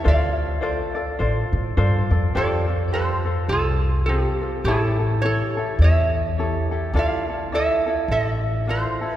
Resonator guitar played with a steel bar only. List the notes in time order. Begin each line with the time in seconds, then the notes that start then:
0.08 D5 F5
2.37 A4 D5
2.94 A4 C5
3.49 F4 A4
4.06 C4 G4
4.65 E4 A4
5.22 A4 C#5
5.82 C#5 E5
6.97 D5 F5
7.55 A4 E5
8.11 A4 D5
8.69 A4 C5
9.14 A#4